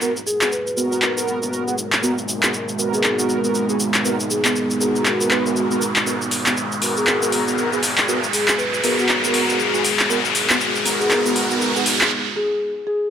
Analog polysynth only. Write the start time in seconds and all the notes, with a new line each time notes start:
0.01 B3 F#4 A#4
0.41 B3 F#4 G#4
0.77 B3 F#4 A#4
1.17 B3 F#4 A#4
1.42 B3 F#4 A#4
1.67 B3 F#4 G#4
2.03 B3 F#4 A#4
2.43 B3 F#4 G#4
2.78 B3 F#4 A#4
3.19 B3 F#4 A#4
3.44 B3 F#4 A#4
3.69 B3 F#4 G#4
4.05 B3 F#4 A#4
4.45 B3 F#4 G#4
4.80 B3 F#4 A#4
5.20 B3 F#4 A#4
5.31 B3 F#4 B4
5.46 B3 F#4 A#4
5.71 B3 F#4 A#4
6.06 B3 F#4 A#4
6.46 B3 F#4 G#4
6.82 B3 F#4 A#4
7.22 B3 F#4 A#4
7.47 B3 F#4 A#4
7.72 B3 F#4 G#4
8.08 B3 F#4 A#4
8.48 B3 F#4 G#4
8.84 B3 F#4 A#4
9.23 B3 F#4 A#4
9.49 B3 F#4 A#4
9.74 B3 F#4 G#4
10.10 B3 F#4 A#4
10.50 B3 F#4 G#4
10.85 B3 F#4 A#4
11.25 B3 F#4 A#4
11.50 B3 F#4 A#4
11.76 B3 F#4 G#4